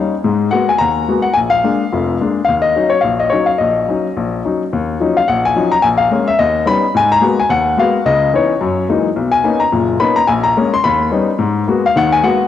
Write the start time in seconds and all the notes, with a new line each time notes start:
Already playing: G3 C#4 D#4
0.24 G#2 G#3
0.51 G#3 A#3 B3 F#4 F#5
0.69 G#5
0.78 D#2 A#5
1.08 G#3 A#3 B3 F#4
1.22 F#5
1.34 A#1 G#5
1.50 F5
1.64 G#3 A#3 D4
1.93 F1 F2
2.21 G#3 A#3 D4
2.45 D#2 F5
2.62 D#5
2.76 F#3 C#4 D#4
2.90 C#5
3.01 A#1 F5
3.20 D#5
3.30 F#3 C#4 D#4 C#5
3.46 F5
3.58 A#1 D#5
3.88 F#3 C#4 D#4
4.17 A#1
4.45 F#3 C#4 D#4
4.73 D#2
5.00 F3 F#3 C#4 D#4
5.17 F5
5.28 A#1 F#5
5.45 G#5
5.56 F3 F#3 C#4 D#4
5.72 A#5
5.82 A#1 G#5
5.98 F5
6.11 G#3 A#3 C#4
6.28 E5
6.39 D#2 D#5
6.66 G3 B3 C#4 D#4 B5
6.95 G#2 G#5
7.12 A#5
7.21 G#3 A#3 B3 F#4
7.40 G#5
7.49 D#2 F#5
7.77 G#3 A#3 B3 F#4 F5
8.05 C#2 C#3 D#5
8.33 E3 B3 C#4 D#4 C#5
8.61 F#2
8.89 E3 F#3 G#3 A#3 D#4
9.16 B1
9.32 G#5
9.44 A#3 B3 C#4 D#4
9.60 A#5
9.72 F#1 A#2
10.00 A#3 B3 C#4 D#4 B5
10.16 A#5
10.27 A#1 G#5
10.44 A#5
10.57 G#3 A#3 C#4
10.74 C6
10.84 D#2 B5
11.11 G3 B3 C#4 D#4
11.38 G#2
11.67 G#3 A#3 B3 F#4
11.86 F5
11.96 D#2 D#3 F#5
12.12 G#5
12.23 G#3 A#3 B3 F#4 F#5